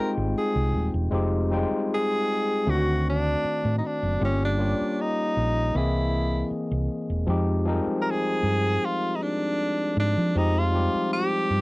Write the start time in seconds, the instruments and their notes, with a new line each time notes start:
Already playing: tine electric piano G3 G#3 C4 D#4 F4 G4, tenor saxophone A#4
0.00 tine electric piano G5
0.17 fingered electric bass G#1
0.38 tenor saxophone G#4
0.56 fingered electric bass C2
0.73 fingered electric bass D#1
0.94 fingered electric bass E1
1.11 fingered electric bass F1, tine electric piano G#3 C4 D#4 F4 G4
1.50 tine electric piano G3 C4 D#4 F4 G5
1.57 tine electric piano G#3
1.71 muted fingered electric bass stroke
1.94 tenor saxophone G#4
2.65 fingered electric bass D2, tine electric piano D#3 A3 C4 D4 F4
2.70 tenor saxophone F#4
2.75 tine electric piano F#4
3.10 tenor saxophone D4
3.44 muted fingered electric bass stroke
3.65 fingered electric bass A2
3.78 tenor saxophone D#4
3.86 tenor saxophone D4
4.03 fingered electric bass F#1
4.20 fingered electric bass G1, tine electric piano G3 A#3 C#4 F4 G4
4.25 tenor saxophone C#4
4.45 tenor saxophone D4
4.58 tine electric piano G3 A#3 F4 G4 C#5
4.81 muted fingered electric bass stroke
5.01 tenor saxophone D#4
5.37 fingered electric bass A#1
5.74 fingered electric bass C2, tine electric piano E3 A#3 C4 G#4 D#5, tenor saxophone E4
6.51 muted fingered electric bass stroke
6.71 fingered electric bass C2
7.10 fingered electric bass E1
7.26 fingered electric bass F2, tine electric piano F3 G#3 C4 D#4 G4
7.65 tine electric piano F3 G3 C4 D#4 A#4
7.73 tine electric piano G#4
7.87 muted fingered electric bass stroke
8.01 tenor saxophone A#4
8.11 tenor saxophone G#4
8.43 fingered electric bass G2
8.85 tenor saxophone F4
9.15 tenor saxophone D#4
9.22 tenor saxophone D4
9.97 fingered electric bass G#2, tenor saxophone D4
10.18 fingered electric bass F3
10.35 fingered electric bass F2, tine electric piano F3 G#3 C4 D#4 G4, tenor saxophone D#4
10.59 tenor saxophone F4
10.72 tine electric piano F3 G3 C4 D#4 G4
10.95 muted fingered electric bass stroke
11.13 tenor saxophone G4
11.50 fingered electric bass G2